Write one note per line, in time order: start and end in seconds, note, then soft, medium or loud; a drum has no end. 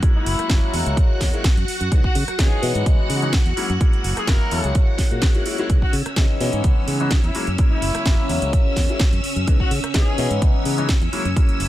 0.00 0.47 F#3 medium
0.00 0.47 G#3 medium
0.00 0.48 A#3 medium
0.00 0.48 C#4 medium
0.00 0.48 E4 medium
0.00 5.71 F#4 medium
0.00 5.70 F#5 medium
0.00 kick loud
0.00 closed hi-hat medium
0.15 0.81 E4 loud
0.15 muted fingered electric bass stroke soft
0.26 0.35 F#1 loud
0.26 open hi-hat loud
0.39 cross-stick medium
0.39 closed hi-hat medium
0.50 0.58 F#1 loud
0.50 0.71 F#3 medium
0.50 0.71 G#3 medium
0.50 0.71 A#3 medium
0.50 0.71 C#4 medium
0.50 0.71 E4 loud
0.50 kick loud
0.50 snare loud
0.50 closed hi-hat medium
0.73 0.82 E2 loud
0.73 1.30 F#3 medium
0.73 1.31 G#3 medium
0.73 1.31 A#3 medium
0.73 1.31 C#4 medium
0.73 1.31 E4 loud
0.73 open hi-hat loud
0.86 0.94 C#2 medium
0.86 closed hi-hat medium
0.97 kick loud
0.97 closed hi-hat medium
1.10 muted fingered electric bass stroke soft
1.21 1.29 E2 medium
1.21 kick medium
1.21 snare medium
1.21 open hi-hat loud
1.33 1.41 F#3 medium
1.33 1.41 G#3 medium
1.33 1.41 A#3 medium
1.33 1.41 C#4 medium
1.33 1.41 E4 medium
1.33 closed hi-hat soft
1.44 kick loud
1.44 snare loud
1.44 closed hi-hat medium
1.57 1.64 F#2 loud
1.57 closed hi-hat soft
1.68 muted fingered electric bass stroke soft
1.68 open hi-hat loud
1.81 1.88 F#2 medium
1.81 closed hi-hat soft
1.91 2.00 C#2 loud
1.91 2.00 E3 medium
1.91 2.00 G#3 medium
1.91 2.01 B3 medium
1.91 2.01 C#4 medium
1.91 2.01 D#4 medium
1.91 kick loud
1.91 closed hi-hat medium
2.04 2.15 F#4 medium
2.04 kick medium
2.15 2.24 C#3 loud
2.15 open hi-hat loud
2.28 muted fingered electric bass stroke soft
2.28 cross-stick medium
2.28 closed hi-hat medium
2.38 2.47 C#3 loud
2.38 2.60 E3 medium
2.38 2.60 G#3 medium
2.38 2.60 B3 medium
2.38 2.60 C#4 medium
2.38 2.60 D#4 medium
2.38 2.75 G#4 medium
2.38 kick loud
2.38 snare loud
2.38 closed hi-hat medium
2.62 2.71 B2 loud
2.62 2.83 E3 loud
2.62 2.83 G#3 medium
2.62 2.84 B3 medium
2.62 2.84 C#4 medium
2.62 2.84 D#4 loud
2.62 open hi-hat loud
2.75 2.82 G#2 medium
2.75 closed hi-hat medium
2.86 3.19 E3 medium
2.86 kick loud
2.86 closed hi-hat medium
2.99 muted fingered electric bass stroke soft
3.10 3.39 C#3 medium
3.10 open hi-hat loud
3.22 3.30 E3 medium
3.22 3.30 G#3 medium
3.22 3.30 B3 medium
3.22 3.30 C#4 medium
3.22 3.30 D#4 loud
3.22 closed hi-hat soft
3.33 kick loud
3.33 snare loud
3.33 closed hi-hat medium
3.46 3.53 E2 loud
3.46 closed hi-hat soft
3.56 3.65 F#3 loud
3.56 3.66 G#3 medium
3.56 3.66 A#3 medium
3.56 3.66 C#4 medium
3.56 3.66 E4 loud
3.56 muted fingered electric bass stroke soft
3.56 open hi-hat loud
3.69 3.77 F#2 medium
3.69 closed hi-hat soft
3.80 4.25 F#3 medium
3.80 4.25 G#3 medium
3.80 4.25 A#3 medium
3.80 4.25 C#4 medium
3.80 4.25 E4 medium
3.80 kick loud
3.80 closed hi-hat medium
3.93 muted fingered electric bass stroke soft
3.93 closed hi-hat soft
4.04 4.13 F#1 loud
4.04 open hi-hat loud
4.17 4.26 G#4 medium
4.17 cross-stick medium
4.17 closed hi-hat soft
4.27 4.36 F#1 loud
4.27 4.49 F#3 medium
4.27 4.49 G#3 medium
4.27 4.49 A#3 medium
4.27 4.49 C#4 medium
4.27 4.49 E4 loud
4.27 4.75 A#4 loud
4.27 kick loud
4.27 snare loud
4.27 closed hi-hat medium
4.51 4.60 E2 loud
4.51 5.08 F#3 medium
4.51 5.09 G#3 medium
4.51 5.09 A#3 medium
4.51 5.09 C#4 medium
4.51 5.09 E4 loud
4.51 open hi-hat loud
4.64 4.71 C#2 medium
4.64 closed hi-hat soft
4.75 kick loud
4.75 closed hi-hat medium
4.98 kick medium
4.98 snare medium
4.98 open hi-hat loud
5.11 5.19 A#2 medium
5.11 5.32 F#3 medium
5.11 5.32 G#3 medium
5.11 5.32 A#3 medium
5.11 5.32 C#4 medium
5.11 5.32 F#4 medium
5.22 kick loud
5.22 snare loud
5.22 closed hi-hat medium
5.35 5.43 F#3 medium
5.35 5.43 G#3 medium
5.35 5.43 A#3 medium
5.35 5.43 C#4 medium
5.35 5.43 E4 medium
5.35 closed hi-hat soft
5.46 5.55 F#3 medium
5.46 5.55 G#3 medium
5.46 5.56 A#3 medium
5.46 5.56 C#4 medium
5.46 5.56 E4 medium
5.46 open hi-hat loud
5.58 5.66 F#3 medium
5.58 5.66 G#3 medium
5.58 5.66 A#3 medium
5.58 5.67 C#4 medium
5.58 5.67 E4 loud
5.58 closed hi-hat soft
5.69 5.78 C#2 loud
5.69 5.78 E3 medium
5.69 5.78 C#4 medium
5.69 11.68 C#4 medium
5.69 11.68 E6 medium
5.69 kick loud
5.69 closed hi-hat medium
5.82 5.93 F#4 medium
5.82 kick medium
5.93 6.01 C#3 loud
5.93 open hi-hat loud
6.06 muted fingered electric bass stroke soft
6.06 cross-stick medium
6.06 closed hi-hat medium
6.16 6.25 C#3 loud
6.16 6.38 E3 medium
6.16 6.38 G#3 medium
6.16 6.38 B3 medium
6.16 6.38 C#4 medium
6.16 6.38 D#4 medium
6.16 kick loud
6.16 snare loud
6.16 closed hi-hat medium
6.40 6.49 B2 loud
6.40 6.61 E3 loud
6.40 6.62 G#3 medium
6.40 6.62 B3 medium
6.40 6.62 C#4 medium
6.40 6.62 D#4 loud
6.40 open hi-hat loud
6.53 6.60 G#2 medium
6.53 closed hi-hat medium
6.64 6.72 C#2 medium
6.64 6.97 G#3 medium
6.64 6.97 B3 medium
6.64 6.98 C#4 medium
6.64 kick loud
6.64 closed hi-hat medium
6.76 muted fingered electric bass stroke soft
6.87 7.17 C#3 medium
6.87 open hi-hat loud
7.00 7.08 E3 medium
7.00 7.08 G#3 medium
7.00 7.08 B3 medium
7.00 7.08 C#4 medium
7.00 7.08 D#4 loud
7.00 closed hi-hat soft
7.11 kick loud
7.11 snare loud
7.11 closed hi-hat medium
7.24 7.31 E2 loud
7.24 7.35 E4 medium
7.24 closed hi-hat soft
7.35 7.44 F#3 medium
7.35 7.44 G#3 medium
7.35 7.44 A#3 medium
7.35 7.44 C#4 medium
7.35 7.44 E4 loud
7.35 muted fingered electric bass stroke soft
7.35 open hi-hat loud
7.47 7.55 F#2 loud
7.47 closed hi-hat soft
7.58 8.03 F#3 medium
7.58 8.03 G#3 medium
7.58 8.03 A#3 medium
7.58 8.04 C#4 medium
7.58 8.04 E4 medium
7.58 kick loud
7.58 closed hi-hat medium
7.71 8.37 E4 loud
7.71 muted fingered electric bass stroke soft
7.82 7.90 F#1 loud
7.82 open hi-hat loud
7.95 muted fingered electric bass stroke soft
7.95 cross-stick medium
7.95 closed hi-hat medium
8.06 8.14 F#1 loud
8.06 8.27 F#3 medium
8.06 8.27 G#3 medium
8.06 8.27 A#3 medium
8.06 8.27 C#4 medium
8.06 8.27 E4 loud
8.06 kick loud
8.06 snare loud
8.06 closed hi-hat medium
8.29 8.38 E2 loud
8.29 8.87 F#3 medium
8.29 8.87 G#3 medium
8.29 8.87 A#3 medium
8.29 8.87 C#4 medium
8.29 8.87 E4 loud
8.29 open hi-hat loud
8.42 8.49 C#2 medium
8.42 closed hi-hat medium
8.53 kick loud
8.53 closed hi-hat medium
8.66 muted fingered electric bass stroke soft
8.76 8.85 E2 medium
8.76 kick medium
8.76 snare medium
8.76 open hi-hat loud
8.89 8.97 F#3 medium
8.89 8.97 G#3 medium
8.89 8.97 A#3 medium
8.89 8.97 C#4 medium
8.89 8.97 E4 medium
8.89 closed hi-hat soft
8.99 kick loud
8.99 snare loud
8.99 closed hi-hat medium
9.13 9.20 F#2 loud
9.13 closed hi-hat soft
9.24 open hi-hat loud
9.36 9.44 F#2 medium
9.36 closed hi-hat soft
9.47 9.56 C#2 loud
9.47 9.56 E3 medium
9.47 9.57 G#3 medium
9.47 9.57 B3 medium
9.47 9.57 C#4 medium
9.47 9.57 D#4 medium
9.47 kick loud
9.47 closed hi-hat medium
9.60 9.71 F#4 loud
9.60 kick medium
9.71 9.79 C#3 loud
9.71 open hi-hat loud
9.83 muted fingered electric bass stroke soft
9.83 cross-stick medium
9.83 closed hi-hat medium
9.94 10.03 C#3 loud
9.94 10.16 E3 medium
9.94 10.16 G#3 medium
9.94 10.16 B3 medium
9.94 10.16 C#4 medium
9.94 10.16 D#4 medium
9.94 10.31 G#4 loud
9.94 kick loud
9.94 snare loud
9.94 closed hi-hat medium
10.18 10.27 B2 loud
10.18 10.39 E3 loud
10.18 10.39 G#3 medium
10.18 10.39 B3 medium
10.18 10.40 C#4 medium
10.18 10.40 D#4 loud
10.18 open hi-hat loud
10.30 10.38 G#2 medium
10.30 closed hi-hat medium
10.42 10.75 E3 medium
10.42 10.75 G#3 medium
10.42 10.75 B3 medium
10.42 10.75 C#4 medium
10.42 10.76 D#4 loud
10.42 kick loud
10.42 closed hi-hat medium
10.65 10.95 C#3 medium
10.65 open hi-hat loud
10.78 10.86 E3 medium
10.78 10.86 G#3 medium
10.78 10.86 B3 medium
10.78 10.86 C#4 medium
10.78 10.86 D#4 loud
10.78 closed hi-hat soft
10.89 kick loud
10.89 snare loud
10.89 closed hi-hat medium
11.01 11.09 E2 loud
11.01 closed hi-hat soft
11.12 11.21 F#3 loud
11.12 11.22 G#3 medium
11.12 11.22 A#3 medium
11.12 11.22 C#4 medium
11.12 11.22 E4 loud
11.12 muted fingered electric bass stroke soft
11.12 open hi-hat loud
11.25 11.33 F#2 medium
11.25 closed hi-hat soft
11.36 11.68 F#3 medium
11.36 11.68 G#3 medium
11.36 11.68 A#3 medium
11.36 11.68 C#4 medium
11.36 11.68 E4 medium
11.36 kick loud
11.36 closed hi-hat medium
11.49 muted fingered electric bass stroke soft
11.49 closed hi-hat soft
11.60 11.68 F#1 loud
11.60 open hi-hat loud